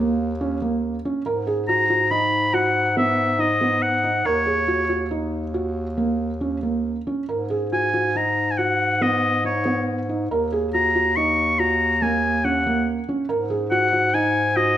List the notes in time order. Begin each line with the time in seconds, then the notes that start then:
Already playing: D#2
0.00 A#3
0.41 C#4
0.62 A#3
1.05 C#4
1.26 G#2 A#4
1.47 G#4
1.68 F#4 A#5
1.90 F#4
2.11 D#4 B5
2.54 F#4 F#5
2.97 B3 E5
3.39 D#4 D#5
3.61 B3
3.82 F#5
4.04 D#4
4.25 D#2 A#4 C#5
4.46 G#4
4.68 F#4
4.89 F#4
5.11 D#4
5.54 F#4
5.97 A#3
6.41 C#4
6.63 A#3
7.07 C#4
7.27 G#2 A#4
7.50 G#4
7.73 F#4 G#5
7.94 F#4
8.16 D#4 A#5
8.51 G#5
8.58 F#4 F#5
9.01 B3 D#5
9.44 D#4 C#5
9.65 B3
10.09 D#4
10.30 D#2 A#4
10.52 G#4
10.74 F#4 A#5
10.95 F#4
11.16 D#4 C#6
11.59 F#4 A#5
12.02 A#3 G#5
12.44 C#4 F#5
12.66 A#3
13.09 C#4
13.29 G#2 A#4
13.50 G#4
13.71 F#4 F#5
13.93 F#4
14.14 D#4 G#5
14.56 F#4 D#5